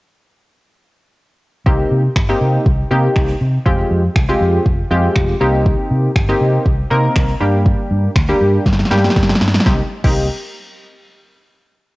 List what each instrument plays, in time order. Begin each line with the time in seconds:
1.66 fingered electric bass C2, analog polysynth A#3 C4 D#4 G4, kick
1.91 fingered electric bass C3
2.16 fingered electric bass G1, finger snap, kick
2.29 analog polysynth A#3 C4 D#4 G4
2.41 fingered electric bass C3
2.66 fingered electric bass C2, kick
2.91 fingered electric bass C3, analog polysynth A#3 C4 D#4 G4
3.16 fingered electric bass C2, finger snap, kick
3.41 fingered electric bass C3
3.66 fingered electric bass F1, analog polysynth G#3 C4 F4 G4, kick
3.91 fingered electric bass F2
4.16 fingered electric bass C2, finger snap, kick
4.29 analog polysynth G#3 C4 F4 G4
4.41 fingered electric bass F2
4.66 fingered electric bass F1, kick
4.91 fingered electric bass F2, analog polysynth G#3 C4 F4 G4
5.16 fingered electric bass F1, finger snap, kick
5.40 fingered electric bass C2, analog polysynth A#3 C4 D#4 G4
5.66 kick
5.91 fingered electric bass C3
6.16 fingered electric bass G1, finger snap, kick
6.29 analog polysynth A#3 C4 D#4 G4
6.41 fingered electric bass C3
6.66 fingered electric bass C2, kick
6.90 fingered electric bass C3, analog polysynth A#3 C4 D#4 A#4
7.16 fingered electric bass C2, finger snap, kick
7.40 fingered electric bass G2, analog polysynth G3 A#3 D4 G4
7.66 kick
7.91 fingered electric bass G2
8.16 fingered electric bass D2, finger snap, kick
8.29 analog polysynth G3 A#3 D4 G4
8.41 fingered electric bass G2
8.66 fingered electric bass G1, kick, snare
8.73 snare
8.79 snare
8.85 snare
8.91 fingered electric bass G2, analog polysynth G3 A#3 D4 G4, snare
8.98 snare
9.04 snare
9.10 snare
9.16 fingered electric bass G1, kick, snare
9.23 snare
9.29 snare
9.35 snare
9.41 fingered electric bass G2, snare
9.48 snare
9.54 snare
9.60 snare
9.66 fingered electric bass C2, analog polysynth A#3 C4 D#4 G4, kick, snare
10.04 fingered electric bass C2, analog polysynth A#3 C4 D#4 G4, kick, crash